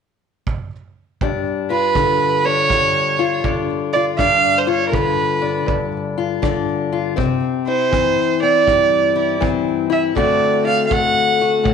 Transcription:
0.47 kick
1.21 steel-string acoustic guitar G2 D4, kick
1.70 steel-string acoustic guitar F4, fiddle B4
1.95 steel-string acoustic guitar D3, kick
2.44 steel-string acoustic guitar D4, fiddle C#5
2.68 steel-string acoustic guitar G2, kick
3.19 steel-string acoustic guitar F4
3.44 steel-string acoustic guitar D3 D4, kick
3.93 steel-string acoustic guitar F4, fiddle D5
4.17 steel-string acoustic guitar G2 D4, fiddle F5, kick
4.58 fiddle C5
4.67 steel-string acoustic guitar F4, fiddle C#5
4.89 steel-string acoustic guitar D3, fiddle A#4
4.93 fiddle B4, kick
5.42 steel-string acoustic guitar D4
5.66 steel-string acoustic guitar G2, kick
6.18 steel-string acoustic guitar F4
6.42 steel-string acoustic guitar D3 D4, kick
6.92 steel-string acoustic guitar F4
7.16 steel-string acoustic guitar C3 C4, kick
7.67 steel-string acoustic guitar E4, fiddle C5
7.91 steel-string acoustic guitar E3, kick
8.42 steel-string acoustic guitar C4, fiddle D5
8.66 steel-string acoustic guitar G2, kick
9.16 steel-string acoustic guitar E4
9.40 steel-string acoustic guitar E3 C4, kick
9.90 steel-string acoustic guitar E4, fiddle E5
10.15 steel-string acoustic guitar D3 A3 C4 F#4, fiddle D5, kick
10.66 steel-string acoustic guitar F#4, fiddle F5
10.87 steel-string acoustic guitar A3, fiddle F5
10.91 fiddle F#5, kick
11.41 steel-string acoustic guitar F#4
11.64 steel-string acoustic guitar A2, kick

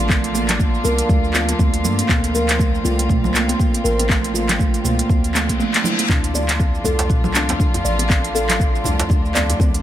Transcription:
Already playing: 808-style bass A1, string section D3 F3 A#3 D4 F4
0.09 kalimba A3, kick, clap, high conga, shaker
0.24 closed hi-hat, shaker
0.35 kalimba A#3, muted conga, shaker
0.49 clap, closed hi-hat, low conga, shaker
0.59 kalimba A#3, kick, muted conga, shaker
0.74 shaker
0.84 808-style bass C2, kalimba A#4, muted conga, high conga, shaker
0.98 closed hi-hat, shaker
1.09 808-style bass D2, kalimba A3, kick, muted conga, shaker
1.24 shaker
1.34 kalimba F4, clap, high conga, shaker
1.49 closed hi-hat, muted conga, shaker
1.59 808-style bass D2, kalimba A3, kick, high conga, shaker
1.74 closed hi-hat, muted conga, shaker
1.84 808-style bass G2, kalimba A#3, low conga, shaker
1.99 closed hi-hat, muted conga, shaker
2.09 808-style bass D2, kalimba A#3, string section C4, kick, clap, mid tom, high conga, shaker
2.24 closed hi-hat, shaker
2.34 kalimba A#4, muted conga, shaker
2.49 clap, closed hi-hat, shaker
2.59 kalimba A3, kick, muted conga, shaker
2.75 shaker
2.84 808-style bass C2, kalimba F4, muted conga, high conga, shaker
2.99 closed hi-hat, shaker
3.09 kalimba A3, kick, mid tom, muted conga, high conga, shaker
3.24 low conga, shaker
3.34 kalimba A#3, clap, high conga, shaker
3.49 closed hi-hat, muted conga, high conga, shaker
3.59 kalimba A#3, kick, shaker
3.74 closed hi-hat, muted conga, shaker
3.84 808-style bass A1, kalimba A#4, shaker
3.99 closed hi-hat, muted conga, shaker
4.09 kalimba A3, kick, clap, high conga, shaker
4.24 closed hi-hat, shaker
4.34 kalimba F4, muted conga, shaker
4.49 clap, closed hi-hat, low conga, shaker
4.59 kalimba A3, kick, muted conga, shaker
4.74 closed hi-hat, shaker
4.84 808-style bass C2, kalimba A#3, mid tom, muted conga, high conga, shaker
4.99 closed hi-hat, shaker
5.09 808-style bass D2, kalimba A#3, kick, reverse cymbal, muted conga, shaker
5.24 closed hi-hat, shaker
5.34 kalimba A3, clap, high conga, shaker
5.49 kalimba A#3, kick, closed hi-hat, muted conga, shaker
5.59 kalimba A3, high conga, shaker
5.74 clap, closed hi-hat, muted conga, shaker
5.84 kalimba E4, low conga, shaker
5.99 closed hi-hat, muted conga, shaker
6.09 808-style bass D2, string section A2 D3 F3 D4 F4, kalimba D4, kick, clap, mid tom, high conga, shaker
6.24 closed hi-hat, shaker
6.34 kalimba D5, muted conga, shaker
6.49 clap, closed hi-hat, shaker
6.60 kalimba C4, kick, muted conga, shaker
6.75 shaker
6.84 808-style bass C2, kalimba A4, muted conga, djembe tone, high conga, shaker
6.99 closed hi-hat, djembe slap, shaker
7.09 kalimba C4, kick, mid tom, muted conga, high conga, shaker
7.24 low conga, shaker
7.34 kalimba D4, clap, high conga, shaker
7.49 closed hi-hat, djembe slap, muted conga, high conga, shaker
7.60 kalimba D4, kick, shaker
7.74 closed hi-hat, muted conga, djembe tone, shaker
7.85 808-style bass A1, kalimba D5, shaker
7.99 closed hi-hat, muted conga, shaker
8.10 kalimba C4, kick, clap, high conga, shaker
8.24 closed hi-hat, shaker
8.35 kalimba A4, muted conga, shaker
8.49 clap, closed hi-hat, low conga, shaker
8.59 kalimba C4, kick, muted conga, shaker
8.75 shaker
8.84 808-style bass C2, kalimba D4, muted conga, high conga, djembe tone, shaker
8.99 closed hi-hat, djembe slap, shaker
9.09 808-style bass D2, kalimba D4, kick, muted conga, djembe tone, shaker
9.25 shaker
9.35 kalimba D5, clap, djembe slap, high conga, shaker
9.50 closed hi-hat, muted conga, djembe tone, shaker
9.60 808-style bass D2, kalimba C4, kick, high conga, shaker
9.74 closed hi-hat, muted conga, shaker

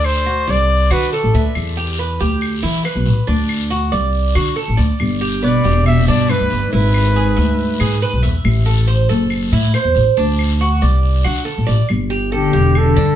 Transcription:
Already playing: upright bass D2, cuban tres D4
0.04 trumpet C5, claves
0.26 cuban tres F#4, short guiro
0.47 upright bass C2, cuban tres D5, trumpet D5, short guiro
0.70 long guiro
0.90 upright bass D3, cuban tres F#4, trumpet B4, claves
1.12 trumpet A4, cuban tres A4, short guiro
1.23 upright bass A1
1.34 upright bass D2, cuban tres E5, short guiro
1.55 upright bass E2, long guiro, claves
1.77 cuban tres G4
1.98 cuban tres B4, short guiro
2.20 upright bass D2, cuban tres G4, short guiro
2.41 long guiro, claves
2.63 upright bass E3, cuban tres E4
2.84 cuban tres B4, short guiro, claves
2.95 upright bass B1
3.05 upright bass A1, short guiro
3.27 upright bass D2, cuban tres D4, long guiro
3.49 claves
3.70 cuban tres F#4, short guiro
3.92 upright bass C2, cuban tres D5, short guiro
4.13 long guiro
4.35 upright bass D3, cuban tres F#4, claves
4.56 cuban tres A4, short guiro
4.68 upright bass A1
4.77 upright bass D2, cuban tres D5, short guiro
4.99 upright bass G1, long guiro, claves
5.21 cuban tres G4
5.42 cello B2, cuban tres B4, trumpet D5, short guiro
5.64 upright bass E1, cuban tres G4, short guiro
5.86 cello B2, trumpet E5, long guiro, claves
6.08 upright bass G2, cello B2, cuban tres D4, trumpet D5
6.28 cello G2, cuban tres B4, trumpet B4, short guiro, claves
6.40 upright bass D2
6.50 upright bass G1, short guiro
6.72 upright bass G#1, cello G#2, cuban tres E4, trumpet B4, long guiro
6.94 claves
7.16 cuban tres G#4, short guiro
7.36 upright bass D2, cuban tres E5, short guiro
7.59 long guiro
7.80 upright bass G#2, cuban tres G#4, claves
8.02 cuban tres B4, short guiro
8.13 upright bass B1
8.23 upright bass E2, cuban tres E5, short guiro
8.44 upright bass A1, long guiro, claves
8.66 cuban tres A4
8.87 cuban tres C5, short guiro
9.09 upright bass F#1, cuban tres A4, short guiro
9.30 long guiro, claves
9.52 upright bass A2, cuban tres E4
9.73 cuban tres C5, short guiro, claves
9.85 upright bass E2
9.95 upright bass A1, short guiro
10.17 upright bass D2, cuban tres D4, long guiro
10.39 claves
10.59 cuban tres F#4, short guiro
10.81 upright bass C2, cuban tres D5, short guiro
11.03 long guiro
11.24 upright bass D3, cuban tres F#4, claves
11.45 cuban tres A4, short guiro
11.57 upright bass A1
11.67 upright bass A1, cuban tres D5, short guiro
11.89 upright bass G1, claves
12.10 cuban tres G4
12.32 cello D3, trumpet G4, cuban tres A4
12.53 upright bass E1, cuban tres G4
12.75 cello D3, trumpet A4, claves
12.96 upright bass G2, cuban tres D4

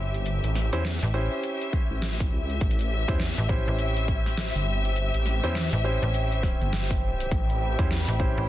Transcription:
Already playing: detuned saw bass G1, grand piano C#4 E4 G4 C5, string section G4 E5, analog synth pad C5 G5
0.14 closed hi-hat
0.26 closed hi-hat
0.43 detuned saw bass A1, closed hi-hat
0.55 snare
0.73 detuned saw bass E2, grand piano C#4 E4 G4 C5, closed hi-hat
0.85 snare, closed hi-hat
1.03 fm bass A1, closed hi-hat
1.14 grand piano C#4 E4 G4 C5
1.43 closed hi-hat
1.61 closed hi-hat
1.73 kick
1.91 detuned saw bass A1
2.02 snare, closed hi-hat
2.20 kick, closed hi-hat
2.32 detuned saw bass C#2
2.50 closed hi-hat
2.61 detuned saw bass A1, kick, closed hi-hat
2.71 closed hi-hat
2.79 closed hi-hat
2.81 closed hi-hat
3.08 detuned saw bass E2, grand piano C#4 E4 G4 C5, kick, closed hi-hat
3.20 snare, closed hi-hat
3.38 fm bass A1, closed hi-hat
3.49 grand piano C#4 E4 G4 C5, kick
3.68 fm bass A1
3.79 closed hi-hat
3.97 closed hi-hat
4.08 kick
4.26 snare
4.37 snare, closed hi-hat
4.55 detuned saw bass G1, closed hi-hat
4.85 closed hi-hat
4.96 closed hi-hat
5.14 detuned saw bass A1, closed hi-hat
5.26 snare
5.43 detuned saw bass E2, grand piano C#4 E4 G4 C5, closed hi-hat
5.55 snare, closed hi-hat
5.73 fm bass A1, closed hi-hat
5.84 grand piano C#4 E4 G4 C5
6.02 fm bass A1
6.14 closed hi-hat
6.32 closed hi-hat
6.43 kick, snare
6.61 detuned saw bass G1, closed hi-hat
6.73 snare, closed hi-hat
6.91 kick, closed hi-hat
7.20 closed hi-hat
7.31 detuned saw bass A1, analog synth pad B5, kick, closed hi-hat
7.50 closed hi-hat
7.79 detuned saw bass E2, grand piano C#4 E4 G4 C5, kick, closed hi-hat
7.91 snare, closed hi-hat
8.08 fm bass A1, closed hi-hat
8.19 grand piano C#4 E4 G4 C5, kick
8.37 fm bass A1, string section G5

